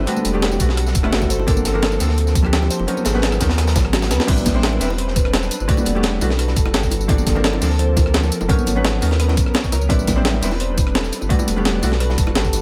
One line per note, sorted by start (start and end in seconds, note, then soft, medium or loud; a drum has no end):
0.00 1.27 G3 medium
0.00 1.28 D4 medium
0.06 0.31 D3 medium
0.06 0.32 G3 medium
0.06 0.32 A3 medium
0.06 0.32 B3 medium
0.06 1.29 F#4 medium
0.06 0.32 F#4 loud
0.06 2.85 A4 medium
0.06 0.23 A4 medium
0.06 closed hi-hat medium
0.16 tambourine soft
0.16 high conga medium
0.25 0.59 E1 loud
0.25 0.41 G4 medium
0.25 closed hi-hat medium
0.25 tambourine medium
0.33 0.57 D3 loud
0.33 0.58 G3 medium
0.33 0.58 A3 medium
0.33 0.58 B3 medium
0.33 0.58 G4 loud
0.42 0.59 G4 medium
0.42 snare loud
0.42 closed hi-hat medium
0.52 tambourine soft
0.52 high bongo medium
0.59 0.94 B1 medium
0.59 0.67 D3 medium
0.59 0.67 G3 medium
0.59 0.67 A3 medium
0.59 0.67 B3 medium
0.59 0.68 F#4 loud
0.59 kick medium
0.59 closed hi-hat medium
0.59 tambourine medium
0.69 snare soft
0.77 cross-stick soft
0.77 closed hi-hat medium
0.87 snare medium
0.87 tambourine soft
0.95 1.11 E1 medium
0.95 kick loud
0.95 closed hi-hat medium
0.95 tambourine medium
1.03 1.29 D3 medium
1.03 1.29 G3 medium
1.03 1.29 A3 medium
1.03 1.29 B3 medium
1.03 1.30 E4 loud
1.03 cross-stick soft
1.13 1.46 G1 loud
1.13 1.28 F#4 loud
1.13 snare loud
1.13 closed hi-hat medium
1.22 kick medium
1.22 snare soft
1.22 tambourine soft
1.22 high bongo medium
1.30 2.86 F3 medium
1.30 2.86 A#3 medium
1.30 2.86 C4 medium
1.30 1.40 C5 loud
1.30 closed hi-hat medium
1.30 tambourine medium
1.39 high bongo medium
1.47 1.64 G1 loud
1.47 1.72 F3 medium
1.47 1.72 A#3 medium
1.47 1.72 C4 medium
1.47 1.72 D4 medium
1.47 1.73 A4 medium
1.47 1.64 A#4 medium
1.47 kick loud
1.47 closed hi-hat medium
1.47 closed hi-hat loud
1.57 tambourine soft
1.57 high conga medium
1.65 1.99 G1 loud
1.65 1.81 A4 medium
1.65 snare medium
1.65 closed hi-hat medium
1.65 tambourine medium
1.73 1.98 F3 loud
1.73 1.98 A#3 medium
1.73 1.98 C4 medium
1.73 1.98 D4 loud
1.73 1.99 A#4 loud
1.82 1.99 A4 medium
1.82 snare loud
1.82 closed hi-hat medium
1.92 tambourine soft
1.92 high bongo medium
1.99 2.69 D2 medium
1.99 2.07 F3 medium
1.99 2.07 A#3 medium
1.99 2.07 C4 medium
1.99 2.08 D4 medium
1.99 2.08 A4 loud
1.99 snare medium
1.99 closed hi-hat loud
1.99 open hi-hat medium
1.99 tambourine medium
2.09 snare soft
2.18 closed hi-hat medium
2.27 snare soft
2.27 tambourine soft
2.35 kick loud
2.35 closed hi-hat medium
2.35 tambourine medium
2.43 2.85 F3 medium
2.43 2.85 A#3 medium
2.43 2.86 C4 medium
2.43 2.86 D4 medium
2.43 2.87 G4 loud
2.43 cross-stick soft
2.53 2.69 G4 loud
2.53 snare loud
2.53 closed hi-hat medium
2.62 snare medium
2.62 high bongo medium
2.70 2.80 C5 loud
2.70 closed hi-hat medium
2.70 closed hi-hat loud
2.70 tambourine medium
2.79 2.87 F1 medium
2.79 high bongo medium
2.87 3.12 F#3 medium
2.87 4.27 F#3 medium
2.87 3.12 B3 medium
2.87 4.27 B3 medium
2.87 3.12 C#4 medium
2.87 4.27 C#4 medium
2.87 3.13 D#4 medium
2.87 3.04 A#4 medium
2.87 4.27 A#4 medium
2.87 3.13 A#4 medium
2.87 closed hi-hat medium
2.97 tambourine soft
2.97 high conga medium
3.05 3.39 G#1 loud
3.05 3.21 G#4 medium
3.05 snare loud
3.05 closed hi-hat medium
3.05 closed hi-hat loud
3.05 tambourine medium
3.05 high conga medium
3.14 3.38 F#3 loud
3.14 3.38 B3 medium
3.14 3.39 C#4 medium
3.14 3.39 D#4 medium
3.14 3.39 B4 loud
3.14 snare soft
3.22 3.40 G#4 medium
3.22 snare loud
3.22 closed hi-hat medium
3.32 cross-stick medium
3.32 tambourine soft
3.32 high bongo soft
3.40 3.77 D#2 medium
3.40 3.47 F#3 loud
3.40 3.47 B3 medium
3.40 3.48 C#4 medium
3.40 3.48 D#4 medium
3.40 3.48 A#4 loud
3.40 kick medium
3.40 snare loud
3.40 closed hi-hat medium
3.40 closed hi-hat loud
3.40 tambourine medium
3.49 snare medium
3.49 snare soft
3.49 closed hi-hat medium
3.58 cross-stick soft
3.58 snare medium
3.58 closed hi-hat medium
3.67 snare loud
3.67 closed hi-hat medium
3.67 tambourine soft
3.75 4.12 G#1 loud
3.75 kick loud
3.75 snare loud
3.75 closed hi-hat medium
3.75 tambourine medium
3.75 high bongo medium
3.85 cross-stick soft
3.93 4.09 F#4 loud
3.93 snare loud
3.93 closed hi-hat medium
4.02 snare loud
4.02 snare medium
4.02 closed hi-hat medium
4.02 tambourine soft
4.02 high bongo medium
4.11 4.19 D#2 medium
4.11 4.21 B4 loud
4.11 snare medium
4.11 closed hi-hat loud
4.11 tambourine medium
4.20 snare medium
4.20 closed hi-hat medium
4.20 high bongo medium
4.27 4.44 A1 medium
4.27 4.52 G3 medium
4.27 6.89 G3 medium
4.27 4.53 C4 medium
4.27 5.67 C4 medium
4.27 4.53 D4 medium
4.27 6.89 D4 medium
4.27 4.53 E4 medium
4.27 5.67 B4 medium
4.27 4.53 B4 medium
4.27 4.45 D5 medium
4.27 kick loud
4.27 closed hi-hat medium
4.27 crash loud
4.27 high bongo medium
4.37 tambourine soft
4.37 high conga medium
4.46 4.80 A1 loud
4.46 kick medium
4.46 snare medium
4.46 closed hi-hat loud
4.46 closed hi-hat medium
4.46 tambourine medium
4.46 high bongo medium
4.46 high conga medium
4.54 4.79 G3 loud
4.54 4.79 C4 medium
4.54 4.79 D4 medium
4.54 4.79 E4 medium
4.54 4.79 C5 loud
4.63 snare loud
4.63 closed hi-hat medium
4.73 high bongo medium
4.80 5.50 E1 medium
4.80 4.88 G3 medium
4.80 4.88 C4 medium
4.80 4.88 D4 medium
4.80 4.88 E4 medium
4.80 4.89 B4 loud
4.80 snare medium
4.80 closed hi-hat medium
4.80 open hi-hat medium
4.80 tambourine medium
4.90 high bongo medium
4.98 5.14 C5 medium
4.98 closed hi-hat medium
5.08 snare soft
5.16 5.33 B4 medium
5.16 kick loud
5.16 closed hi-hat medium
5.16 tambourine medium
5.16 high bongo soft
5.25 cross-stick soft
5.33 5.50 A4 medium
5.33 snare loud
5.33 closed hi-hat medium
5.33 closed hi-hat loud
5.33 high bongo medium
5.43 snare medium
5.43 tambourine soft
5.51 closed hi-hat loud
5.51 closed hi-hat medium
5.51 tambourine medium
5.60 5.68 G1 medium
5.60 tambourine soft
5.60 high bongo soft
5.68 5.93 D3 medium
5.68 5.93 G3 medium
5.68 5.93 A3 medium
5.68 5.93 B3 medium
5.68 6.90 F#4 medium
5.68 5.94 F#4 loud
5.68 8.47 A4 medium
5.68 5.85 D5 medium
5.68 kick loud
5.68 closed hi-hat medium
5.77 tambourine soft
5.77 high bongo medium
5.77 high conga medium
5.85 6.20 E1 loud
5.85 closed hi-hat medium
5.85 closed hi-hat loud
5.85 tambourine medium
5.85 high conga medium
5.95 6.19 D3 loud
5.95 6.19 G3 medium
5.95 6.19 A3 medium
5.95 6.20 B3 medium
5.95 6.20 G4 loud
6.03 snare loud
6.03 closed hi-hat medium
6.03 high bongo medium
6.21 6.55 B1 medium
6.21 6.28 D3 loud
6.21 6.28 G3 medium
6.21 6.29 A3 medium
6.21 6.29 B3 medium
6.21 6.29 F#4 loud
6.21 closed hi-hat medium
6.21 open hi-hat medium
6.21 tambourine medium
6.21 high bongo medium
6.30 snare medium
6.30 snare soft
6.39 6.55 B4 medium
6.39 cross-stick soft
6.39 closed hi-hat medium
6.48 snare medium
6.48 high bongo medium
6.56 6.72 E1 medium
6.56 6.73 A4 medium
6.56 kick loud
6.56 closed hi-hat medium
6.56 tambourine medium
6.66 cross-stick soft
6.66 high bongo medium
6.74 7.08 G1 loud
6.74 6.91 G4 medium
6.74 snare loud
6.74 closed hi-hat medium
6.83 kick medium
6.83 snare medium
6.83 tambourine soft
6.91 8.48 F3 medium
6.91 8.48 A#3 medium
6.91 8.48 C4 medium
6.91 closed hi-hat medium
6.91 closed hi-hat loud
6.91 tambourine medium
6.91 high bongo medium
7.01 tambourine soft
7.08 7.25 G1 loud
7.08 7.33 F3 medium
7.08 7.33 A#3 medium
7.08 7.34 C4 medium
7.08 7.34 D4 medium
7.08 7.34 A4 medium
7.08 7.26 D5 medium
7.08 kick loud
7.08 closed hi-hat medium
7.08 high bongo medium
7.18 tambourine soft
7.18 high conga medium
7.26 7.60 G1 loud
7.26 kick medium
7.26 snare medium
7.26 closed hi-hat medium
7.26 tambourine medium
7.26 high conga medium
7.35 7.59 F3 medium
7.35 7.59 A#3 medium
7.35 7.60 C4 medium
7.35 7.60 D4 medium
7.35 7.60 A#4 loud
7.35 high bongo medium
7.44 snare loud
7.44 closed hi-hat medium
7.53 high bongo medium
7.61 8.31 D2 medium
7.61 7.68 F3 loud
7.61 7.69 A#3 medium
7.61 7.69 C4 medium
7.61 7.69 D4 medium
7.61 7.69 A4 loud
7.61 snare medium
7.61 closed hi-hat medium
7.61 open hi-hat medium
7.61 tambourine medium
7.70 snare soft
7.79 7.95 C5 medium
7.79 closed hi-hat medium
7.79 high bongo medium
7.97 8.13 A#4 medium
7.97 kick loud
7.97 closed hi-hat medium
7.97 tambourine medium
7.97 high bongo medium
8.06 cross-stick soft
8.14 8.31 A4 medium
8.14 snare loud
8.14 closed hi-hat medium
8.23 snare soft
8.23 tambourine soft
8.23 high bongo medium
8.32 closed hi-hat medium
8.32 tambourine medium
8.41 8.49 F1 medium
8.41 tambourine soft
8.41 high bongo medium
8.49 8.73 F#3 medium
8.49 9.88 F#3 medium
8.49 8.74 B3 medium
8.49 9.88 B3 medium
8.49 9.88 C#4 medium
8.49 8.74 C#4 medium
8.49 8.74 D#4 medium
8.49 9.88 A#4 medium
8.49 8.74 A#4 loud
8.49 8.66 C#5 medium
8.49 kick loud
8.49 closed hi-hat medium
8.59 tambourine soft
8.59 high conga medium
8.66 9.01 G#1 loud
8.66 closed hi-hat medium
8.66 tambourine medium
8.66 high bongo medium
8.66 high conga medium
8.75 9.00 F#3 medium
8.75 9.00 B3 medium
8.75 9.00 C#4 medium
8.75 9.00 D#4 medium
8.75 9.00 B4 loud
8.84 snare loud
8.84 closed hi-hat medium
8.84 high bongo medium
9.01 9.36 D#2 medium
9.01 9.09 F#3 medium
9.01 9.09 B3 medium
9.01 9.09 C#4 medium
9.01 9.09 D#4 medium
9.01 9.10 A#4 loud
9.01 closed hi-hat medium
9.01 open hi-hat medium
9.01 tambourine medium
9.11 snare soft
9.11 snare medium
9.11 high bongo medium
9.20 9.36 B4 medium
9.20 cross-stick soft
9.20 closed hi-hat medium
9.28 snare medium
9.28 high bongo medium
9.37 kick loud
9.37 closed hi-hat medium
9.37 tambourine medium
9.46 cross-stick soft
9.54 9.71 C#5 medium
9.54 snare loud
9.54 closed hi-hat medium
9.54 high bongo medium
9.63 kick medium
9.63 snare soft
9.63 tambourine soft
9.72 9.88 C#2 medium
9.72 9.89 A#4 medium
9.72 closed hi-hat medium
9.72 tambourine medium
9.72 high bongo medium
9.81 tambourine soft
9.89 10.06 A1 loud
9.89 10.14 G3 medium
9.89 11.29 G3 medium
9.89 10.14 C4 medium
9.89 11.29 C4 medium
9.89 10.14 D4 medium
9.89 11.29 D4 medium
9.89 10.15 E4 medium
9.89 11.29 B4 medium
9.89 10.15 B4 medium
9.89 10.06 D5 medium
9.89 kick loud
9.89 closed hi-hat loud
9.89 closed hi-hat medium
9.89 high bongo medium
9.99 tambourine soft
9.99 high conga medium
10.07 10.41 A1 loud
10.07 kick medium
10.07 snare medium
10.07 closed hi-hat medium
10.07 tambourine medium
10.07 high bongo medium
10.07 high conga medium
10.16 10.40 G3 loud
10.16 10.40 C4 medium
10.16 10.40 D4 medium
10.16 10.41 E4 medium
10.16 10.41 C5 loud
10.25 snare loud
10.25 closed hi-hat medium
10.34 high bongo medium
10.41 11.11 E1 medium
10.41 10.49 G3 medium
10.41 10.49 C4 medium
10.41 10.50 D4 medium
10.41 10.50 E4 medium
10.41 10.50 B4 loud
10.41 snare medium
10.41 closed hi-hat medium
10.41 open hi-hat medium
10.41 tambourine medium
10.51 snare soft
10.51 high bongo medium
10.60 10.76 C5 medium
10.60 closed hi-hat medium
10.78 10.94 B4 medium
10.78 kick loud
10.78 closed hi-hat medium
10.78 tambourine medium
10.78 high bongo medium
10.87 cross-stick soft
10.95 11.12 A4 medium
10.95 snare loud
10.95 closed hi-hat medium
10.95 high bongo medium
11.04 snare medium
11.04 tambourine soft
11.12 closed hi-hat medium
11.12 tambourine medium
11.21 11.29 G1 medium
11.21 tambourine soft
11.21 high bongo medium
11.29 11.54 D3 medium
11.29 11.54 G3 medium
11.29 12.52 G3 medium
11.29 11.55 A3 medium
11.29 11.55 B3 medium
11.29 12.52 D4 medium
11.29 12.52 F#4 medium
11.29 11.55 F#4 medium
11.29 12.62 A4 medium
11.29 11.47 D5 medium
11.29 kick loud
11.29 closed hi-hat medium
11.39 tambourine soft
11.39 high bongo medium
11.39 high conga medium
11.48 11.81 E1 loud
11.48 closed hi-hat medium
11.48 tambourine medium
11.48 high conga medium
11.56 11.80 D3 loud
11.56 11.81 G3 medium
11.56 11.81 A3 medium
11.56 11.81 B3 medium
11.56 11.81 G4 loud
11.65 snare loud
11.65 closed hi-hat medium
11.65 high bongo soft
11.82 12.17 B1 medium
11.82 11.90 D3 medium
11.82 11.90 G3 medium
11.82 11.90 A3 medium
11.82 11.90 B3 medium
11.82 11.90 F#4 loud
11.82 closed hi-hat medium
11.82 open hi-hat medium
11.82 tambourine medium
11.82 high bongo medium
11.92 snare soft
12.00 12.16 B4 medium
12.00 cross-stick soft
12.00 closed hi-hat medium
12.10 snare medium
12.10 high bongo medium
12.18 12.34 E1 medium
12.18 12.35 A4 medium
12.18 kick loud
12.18 closed hi-hat medium
12.18 tambourine medium
12.27 cross-stick soft
12.27 high bongo medium
12.35 12.62 G1 loud
12.35 12.52 G4 medium
12.35 snare loud
12.35 closed hi-hat medium
12.45 kick medium
12.45 snare soft
12.45 tambourine soft
12.53 12.62 F3 medium
12.53 12.62 A#3 medium
12.53 12.62 C4 medium
12.53 closed hi-hat medium
12.53 tambourine medium
12.53 high bongo soft